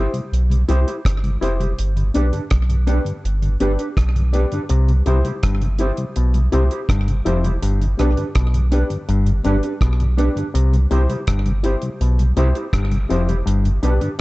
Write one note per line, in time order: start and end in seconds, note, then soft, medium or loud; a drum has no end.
0.00 0.13 E4 medium
0.00 0.13 G4 medium
0.00 0.13 C5 medium
0.14 0.21 C3 medium
0.14 0.21 G3 medium
0.14 closed hi-hat medium
0.32 0.64 B1 medium
0.32 closed hi-hat medium
0.50 0.57 C3 medium
0.50 0.58 G3 medium
0.50 closed hi-hat soft
0.68 0.85 C2 medium
0.68 0.76 C4 medium
0.68 0.79 E4 medium
0.68 0.86 E4 medium
0.68 0.76 E4 medium
0.68 0.76 G4 medium
0.68 0.86 G4 medium
0.68 0.79 G4 medium
0.68 0.79 C5 medium
0.68 0.87 C5 loud
0.68 closed hi-hat medium
0.87 0.95 E4 soft
0.87 0.95 G4 soft
0.87 0.95 C5 medium
0.87 closed hi-hat medium
1.05 1.37 G1 medium
1.05 kick loud
1.05 cross-stick loud
1.05 closed hi-hat medium
1.24 1.31 C3 medium
1.24 1.31 G3 medium
1.24 closed hi-hat soft
1.41 1.74 F1 medium
1.41 1.49 C4 medium
1.41 1.59 E4 medium
1.41 1.52 E4 medium
1.41 1.49 E4 medium
1.41 1.52 G4 medium
1.41 1.59 G4 medium
1.41 1.49 G4 medium
1.41 1.52 C5 medium
1.41 1.60 C5 loud
1.41 closed hi-hat medium
1.60 1.67 C3 medium
1.60 1.67 G3 medium
1.60 1.68 E4 soft
1.60 1.68 G4 soft
1.60 1.68 C5 medium
1.60 closed hi-hat medium
1.79 2.11 G1 loud
1.79 closed hi-hat medium
1.96 2.04 G2 medium
1.96 2.04 D3 medium
1.96 closed hi-hat soft
2.14 2.31 B1 medium
2.14 2.22 B3 medium
2.14 2.32 D4 medium
2.14 2.22 D4 medium
2.14 2.25 D4 medium
2.14 2.32 G4 medium
2.14 2.22 G4 medium
2.14 2.25 G4 medium
2.14 2.33 B4 loud
2.14 2.25 B4 medium
2.14 closed hi-hat medium
2.32 2.41 G2 medium
2.32 2.41 D3 medium
2.32 2.41 D4 soft
2.32 2.41 G4 medium
2.32 2.41 B4 medium
2.32 closed hi-hat medium
2.50 3.00 B1 medium
2.50 kick medium
2.50 cross-stick loud
2.50 closed hi-hat loud
2.69 2.77 G2 medium
2.69 2.77 D3 medium
2.69 closed hi-hat medium
2.87 2.95 B3 medium
2.87 2.97 D4 medium
2.87 3.05 D4 medium
2.87 2.95 D4 medium
2.87 2.98 G4 medium
2.87 2.95 G4 medium
2.87 3.05 G4 medium
2.87 2.98 B4 medium
2.87 3.06 B4 medium
2.87 closed hi-hat medium
3.05 3.13 G2 medium
3.05 3.13 D3 medium
3.05 closed hi-hat soft
3.25 3.56 G1 medium
3.25 closed hi-hat medium
3.42 3.50 G2 medium
3.42 3.50 D3 medium
3.42 closed hi-hat soft
3.60 3.77 G1 medium
3.60 3.68 B3 medium
3.60 3.68 D4 medium
3.60 3.78 D4 medium
3.60 3.71 D4 medium
3.60 3.68 G4 medium
3.60 3.78 G4 medium
3.60 3.71 G4 medium
3.60 3.79 B4 loud
3.60 3.71 B4 medium
3.60 closed hi-hat medium
3.79 3.87 D4 soft
3.79 3.87 G4 soft
3.79 3.87 B4 soft
3.79 closed hi-hat medium
3.97 4.45 B1 medium
3.97 kick loud
3.97 cross-stick loud
3.97 closed hi-hat medium
4.15 4.22 G2 medium
4.15 4.23 D3 medium
4.15 closed hi-hat soft
4.32 4.40 B3 medium
4.32 4.41 D4 medium
4.32 4.51 D4 medium
4.32 4.44 D4 medium
4.32 4.41 G4 medium
4.32 4.51 G4 medium
4.32 4.44 G4 medium
4.32 4.51 B4 medium
4.32 4.45 B4 medium
4.32 closed hi-hat medium
4.52 4.59 G2 medium
4.52 4.59 D3 medium
4.52 4.61 D4 medium
4.52 4.61 G4 medium
4.52 4.60 B4 medium
4.52 closed hi-hat soft
4.69 5.02 C2 loud
4.69 4.92 C3 medium
4.69 closed hi-hat medium
4.88 4.96 C3 medium
4.88 4.96 G3 soft
4.88 closed hi-hat soft
5.06 5.23 C2 medium
5.06 5.18 C3 medium
5.06 5.14 C4 medium
5.06 5.24 E4 medium
5.06 5.14 E4 medium
5.06 5.17 E4 medium
5.06 5.14 G4 medium
5.06 5.24 G4 medium
5.06 5.17 G4 medium
5.06 5.25 C5 loud
5.06 5.17 C5 medium
5.06 closed hi-hat medium
5.24 5.32 C3 medium
5.24 5.32 G3 medium
5.24 5.34 E4 soft
5.24 5.33 G4 soft
5.24 5.33 C5 medium
5.24 closed hi-hat soft
5.43 5.91 G1 medium
5.43 5.65 G2 medium
5.43 kick loud
5.43 cross-stick loud
5.43 closed hi-hat loud
5.61 5.69 C3 medium
5.61 5.69 G3 medium
5.61 closed hi-hat medium
5.79 5.87 C4 medium
5.79 5.87 E4 medium
5.79 5.97 E4 medium
5.79 5.90 E4 medium
5.79 5.87 G4 medium
5.79 5.97 G4 medium
5.79 5.90 G4 medium
5.79 5.98 C5 medium
5.79 5.91 C5 medium
5.79 closed hi-hat medium
5.97 6.05 C3 medium
5.97 6.05 G3 medium
5.97 closed hi-hat soft
6.16 6.48 B1 medium
6.16 6.38 B2 medium
6.16 closed hi-hat medium
6.34 6.42 C3 medium
6.34 6.42 G3 medium
6.34 closed hi-hat soft
6.52 6.69 C2 medium
6.52 6.64 C3 medium
6.52 6.60 C4 medium
6.52 6.70 E4 medium
6.52 6.63 E4 medium
6.52 6.60 E4 medium
6.52 6.70 G4 medium
6.52 6.60 G4 medium
6.52 6.63 G4 medium
6.52 6.71 C5 loud
6.52 6.63 C5 medium
6.52 closed hi-hat medium
6.71 6.79 E4 medium
6.71 6.79 G4 medium
6.71 6.79 C5 medium
6.71 closed hi-hat medium
6.89 7.21 G1 medium
6.89 7.11 G2 medium
6.89 kick loud
6.89 cross-stick loud
6.89 closed hi-hat loud
7.08 7.15 C3 medium
7.08 7.15 G3 medium
7.08 closed hi-hat soft
7.25 7.58 F1 medium
7.25 7.48 F2 medium
7.25 7.33 C4 medium
7.25 7.43 E4 medium
7.25 7.33 E4 medium
7.25 7.36 E4 medium
7.25 7.43 G4 medium
7.25 7.33 G4 medium
7.25 7.36 G4 medium
7.25 7.44 C5 loud
7.25 7.36 C5 medium
7.25 closed hi-hat medium
7.44 7.52 C3 medium
7.44 7.52 G3 medium
7.44 7.53 E4 medium
7.44 7.53 G4 soft
7.44 7.52 C5 medium
7.44 closed hi-hat medium
7.62 7.94 G1 loud
7.62 7.84 G2 medium
7.62 closed hi-hat medium
7.80 7.88 G2 medium
7.80 7.88 D3 medium
7.80 closed hi-hat soft
7.97 8.15 B1 medium
7.97 8.10 B2 medium
7.97 8.05 B3 medium
7.97 8.06 D4 medium
7.97 8.16 D4 medium
7.97 8.09 D4 medium
7.97 8.06 G4 medium
7.97 8.17 G4 medium
7.97 8.09 G4 medium
7.97 8.17 B4 medium
7.97 8.10 B4 medium
7.97 cross-stick medium
7.97 closed hi-hat medium
8.16 8.24 G2 medium
8.16 8.24 D3 medium
8.16 8.25 D4 soft
8.16 8.25 G4 medium
8.16 8.25 B4 medium
8.16 closed hi-hat soft
8.35 8.84 B1 loud
8.35 8.57 B2 medium
8.35 kick medium
8.35 cross-stick loud
8.35 closed hi-hat medium
8.53 8.61 G2 medium
8.53 8.61 D3 medium
8.53 closed hi-hat medium
8.71 8.79 B3 medium
8.71 8.79 D4 medium
8.71 8.82 D4 medium
8.71 8.89 D4 medium
8.71 8.79 G4 medium
8.71 8.90 G4 medium
8.71 8.82 G4 medium
8.71 8.90 B4 medium
8.71 8.83 B4 medium
8.71 closed hi-hat medium
8.90 8.97 G2 medium
8.90 8.97 D3 medium
8.90 closed hi-hat medium
9.09 9.40 G1 loud
9.09 9.30 G2 medium
9.09 closed hi-hat medium
9.26 9.33 G2 medium
9.26 9.34 D3 medium
9.26 closed hi-hat medium
9.44 9.61 G1 medium
9.44 9.56 G2 medium
9.44 9.52 B3 medium
9.44 9.52 D4 medium
9.44 9.62 D4 medium
9.44 9.56 D4 medium
9.44 9.52 G4 medium
9.44 9.63 G4 medium
9.44 9.56 G4 medium
9.44 9.63 B4 loud
9.44 9.56 B4 medium
9.44 closed hi-hat medium
9.63 9.72 D4 soft
9.63 9.71 G4 medium
9.63 9.71 B4 medium
9.63 closed hi-hat medium
9.81 10.29 B1 medium
9.81 10.03 B2 medium
9.81 kick loud
9.81 cross-stick loud
9.81 closed hi-hat medium
10.00 10.07 G2 medium
10.00 10.07 D3 medium
10.00 closed hi-hat soft
10.17 10.25 B3 medium
10.17 10.28 D4 medium
10.17 10.25 D4 medium
10.17 10.35 D4 medium
10.17 10.28 G4 medium
10.17 10.25 G4 medium
10.17 10.36 G4 medium
10.17 10.28 B4 medium
10.17 10.36 B4 medium
10.17 closed hi-hat medium
10.36 10.43 G2 medium
10.36 10.43 D3 medium
10.36 10.45 D4 medium
10.36 10.45 G4 medium
10.36 10.44 B4 medium
10.36 closed hi-hat medium
10.54 10.86 C2 loud
10.54 10.76 C3 medium
10.54 closed hi-hat medium
10.73 10.80 C3 medium
10.73 10.80 G3 soft
10.73 closed hi-hat soft
10.91 11.07 C2 medium
10.91 11.02 C3 medium
10.91 10.98 C4 medium
10.91 11.08 E4 medium
10.91 11.01 E4 medium
10.91 10.98 E4 medium
10.91 11.09 G4 medium
10.91 10.99 G4 medium
10.91 11.01 G4 medium
10.91 11.09 C5 loud
10.91 11.02 C5 medium
10.91 closed hi-hat medium
11.09 11.16 C3 medium
11.09 11.16 G3 medium
11.09 11.18 E4 soft
11.09 11.17 G4 medium
11.09 11.17 C5 medium
11.09 closed hi-hat medium
11.27 11.76 G1 medium
11.27 11.49 G2 medium
11.27 kick medium
11.27 cross-stick loud
11.27 closed hi-hat loud
11.46 11.53 C3 medium
11.46 11.53 G3 medium
11.46 closed hi-hat medium
11.63 11.71 C4 medium
11.63 11.81 E4 medium
11.63 11.71 E4 medium
11.63 11.74 E4 medium
11.63 11.81 G4 medium
11.63 11.71 G4 medium
11.63 11.75 G4 medium
11.63 11.82 C5 medium
11.63 11.75 C5 medium
11.63 closed hi-hat medium
11.82 11.89 C3 medium
11.82 11.89 G3 medium
11.82 closed hi-hat medium
12.01 12.33 B1 medium
12.01 12.23 B2 medium
12.01 closed hi-hat medium
12.18 12.26 C3 medium
12.18 12.26 G3 medium
12.18 closed hi-hat medium
12.36 12.53 C2 medium
12.36 12.48 C3 medium
12.36 12.44 C4 medium
12.36 12.54 E4 medium
12.36 12.44 E4 medium
12.36 12.47 E4 medium
12.36 12.44 G4 medium
12.36 12.55 G4 medium
12.36 12.48 G4 medium
12.36 12.55 C5 loud
12.36 12.48 C5 medium
12.36 closed hi-hat medium
12.55 12.64 E4 soft
12.55 12.63 G4 medium
12.55 12.63 C5 medium
12.55 closed hi-hat medium
12.73 13.05 G1 medium
12.73 12.95 G2 medium
12.73 kick loud
12.73 cross-stick loud
12.73 closed hi-hat medium
12.91 12.99 C3 medium
12.91 12.99 G3 medium
12.91 closed hi-hat soft
13.09 13.42 F1 medium
13.09 13.32 F2 medium
13.09 13.17 C4 medium
13.09 13.17 E4 medium
13.09 13.27 E4 medium
13.09 13.20 E4 medium
13.09 13.17 G4 medium
13.09 13.27 G4 medium
13.09 13.21 G4 medium
13.09 13.28 C5 loud
13.09 13.21 C5 medium
13.09 closed hi-hat medium
13.28 13.36 C3 medium
13.28 13.36 G3 medium
13.28 13.37 E4 soft
13.28 13.36 G4 medium
13.28 13.36 C5 medium
13.28 closed hi-hat soft
13.46 13.79 G1 loud
13.46 13.68 G2 medium
13.46 closed hi-hat medium
13.65 13.72 G2 soft
13.65 13.72 D3 soft
13.65 closed hi-hat soft
13.83 13.99 B1 medium
13.83 13.94 B2 medium
13.83 13.90 B3 medium
13.83 13.93 D4 medium
13.83 14.00 D4 medium
13.83 13.90 D4 medium
13.83 13.90 G4 medium
13.83 14.01 G4 medium
13.83 13.93 G4 medium
13.83 14.01 B4 loud
13.83 13.94 B4 medium
13.83 closed hi-hat medium
14.01 14.09 G2 medium
14.01 14.09 D3 medium
14.01 14.09 D4 medium
14.01 14.09 G4 medium
14.01 14.09 B4 medium
14.01 closed hi-hat soft